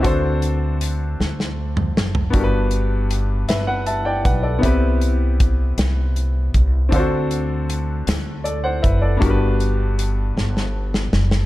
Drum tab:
HH |x-x-x-------|x-x-x-x-x-x-|x-x-x-x-x-x-|x-x-x-x-x-x-|
SD |------oo--o-|------o-----|------o-----|------o-----|
T2 |---------o--|------------|------------|------------|
FT |-----------o|------------|------------|------------|
BD |o-----------|o---------o-|o---o-----o-|o---------o-|

HH |x-x-x-------|
SD |------oo-ooo|
T2 |------------|
FT |------------|
BD |o-----------|